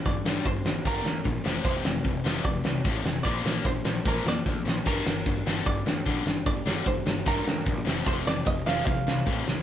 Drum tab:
CC |--------|--------|--------|x-------|
HH |o-o-o-o-|o-o-o-o-|o-o-o-o-|--o-o-o-|
SD |-o-o-o-o|-o-o-o-o|-o-o-o-o|-o-o-o-o|
BD |o-o-o-o-|o-o-o-o-|o-o-o-o-|o-o-o-o-|

CC |--------|--------|
HH |o-o-o-o-|o-o-o-o-|
SD |-o-o-o-o|-o-o-o-o|
BD |o-o-o-o-|o-o-o-o-|